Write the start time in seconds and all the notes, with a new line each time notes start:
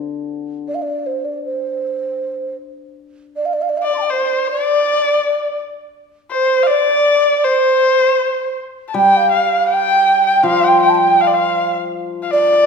Already playing: D3
0.68 D5
0.74 F5
0.82 D5
1.06 C5
1.25 D5
1.45 C5
3.36 D5
3.45 F5
3.53 D5
3.61 F5
3.69 D5
3.77 F5
3.83 D5
3.94 A5 C6
4.02 F5 G5
4.08 C5 D5
4.12 C5
4.48 D5
6.31 C5
6.63 D5 F5
6.71 D5
7.44 C5
8.88 A5
8.94 G3 G5
9.17 F5
9.32 F5
9.69 G5
9.74 G5
10.27 G5
10.41 F3 G5
10.46 F5
10.64 G5
10.82 G5
10.89 A5
10.97 G5
11.21 F5
11.27 D5
11.34 F5
12.23 F5
12.31 D5